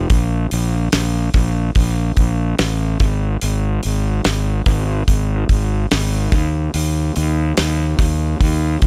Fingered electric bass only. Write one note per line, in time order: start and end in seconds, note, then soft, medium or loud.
0.10 0.46 A#1 medium
0.52 0.87 A#1 medium
0.93 1.29 A#1 medium
1.34 1.70 A#1 medium
1.76 2.11 A#1 medium
2.17 2.53 A#1 medium
2.59 2.94 A1 medium
3.00 3.36 G#1 medium
3.42 3.78 G#1 medium
3.85 4.20 G#1 medium
4.25 4.60 G#1 medium
4.66 5.02 G#1 medium
5.08 5.43 G#1 medium
5.49 5.85 G#1 medium
5.92 6.27 G#1 medium
6.32 6.68 D#2 medium
6.74 7.10 D#2 medium
7.17 7.52 D#2 medium
7.58 7.94 D#2 medium
7.99 8.34 D#2 medium
8.40 8.76 D#2 loud
8.82 8.87 D#2 medium